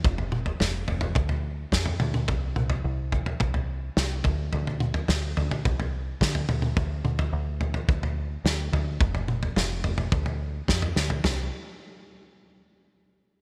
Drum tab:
SD |----o-------o---|------------o---|----o-------o---|------------o---|
T2 |--o-----------oo|--o-------------|--o-----------oo|--o-------------|
FT |oo-oo-oooo---oo-|o--o--oooo----o-|oo-oo-oooo---oo-|o--o--oooo----o-|
BD |o-------o---o---|o-----o-o-----o-|--------o---o---|o-------o-------|

SD |----o-------o-o-|o---------------|
T2 |--o-------------|----------------|
FT |oo-oo-oooo---o-o|o---------------|
BD |o-------o---o---|----------------|